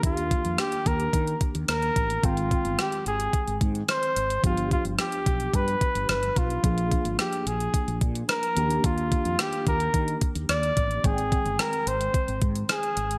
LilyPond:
<<
  \new Staff \with { instrumentName = "Flugelhorn" } { \time 4/4 \key ees \major \tempo 4 = 109 f'4 g'8 bes'4 r8 bes'4 | f'4 g'8 aes'4 r8 c''4 | f'8 f'8 g'4 b'4 b'8 f'8~ | f'4 g'8 aes'4 r8 bes'4 |
f'4 g'8 bes'4 r8 d''4 | aes'4 bes'8 c''4 r8 aes'4 | }
  \new Staff \with { instrumentName = "Tine electric piano" } { \time 4/4 \key ees \major <ees bes d' g'>2.~ <ees bes d' g'>8 r8 | <ees aes c' g''>1 | <f b d' g'>1 | <f bes d' aes'>2.~ <f bes d' aes'>8 <ees bes d' g'>8~ |
<ees bes d' g'>2.~ <ees bes d' g'>8 r8 | <ees aes c' g''>1 | }
  \new Staff \with { instrumentName = "Fretless electric bass" } { \clef bass \time 4/4 \key ees \major ees,8. f,16 r8 ees,8 ees8 r16 ees,16 ees,8 a,,8 | aes,,8. g,,16 r8 aes,,8 r16 aes,,16 aes,8 r8 aes,,8 | g,,8. g,,16 r8 b,,8 g,8 r16 g,,16 g,,8 b,,8 | bes,,8. aes,,16 r8 bes,,8 r16 bes,,16 bes,8 r8 ees,8 |
ees,8. f,16 r8 ees,8 ees8 r16 ees,16 ees,8 a,,8 | aes,,8. g,,16 r8 aes,,8 r16 aes,,16 aes,8 r8 aes,,8 | }
  \new DrumStaff \with { instrumentName = "Drums" } \drummode { \time 4/4 <hh bd>16 hh16 <hh bd>16 hh16 <hh ss>16 hh16 <hh bd>16 hh16 <hh bd>16 hh16 <hh bd>16 hh16 <hh ss>16 hh16 <hh bd>16 hh16 | <hh bd>16 hh16 <hh bd>16 hh16 <hh ss>16 hh16 hh16 hh16 <hh bd>16 hh16 <hh bd>16 hh16 <hh ss>16 hh16 hh16 hh16 | <hh bd>16 hh16 <hh bd>16 hh16 <hh ss>16 hh16 <hh bd>16 hh16 <hh bd>16 hh16 <hh bd>16 hh16 <hh ss>16 hh16 <hh bd>16 hh16 | <hh bd>16 hh16 <hh bd>16 hh16 <hh ss>16 hh16 hh16 hh16 <hh bd>16 hh16 <hh bd>16 hh16 <hh ss>16 hh16 hh16 hh16 |
<hh bd>16 hh16 <hh bd>16 hh16 <hh ss>16 hh16 <hh bd>16 hh16 <hh bd>16 hh16 <hh bd>16 hh16 <hh ss>16 hh16 <hh bd>16 hh16 | <hh bd>16 hh16 <hh bd>16 hh16 <hh ss>16 hh16 hh16 hh16 <hh bd>16 hh16 <hh bd>16 hh16 <hh ss>16 hh16 hh16 hh16 | }
>>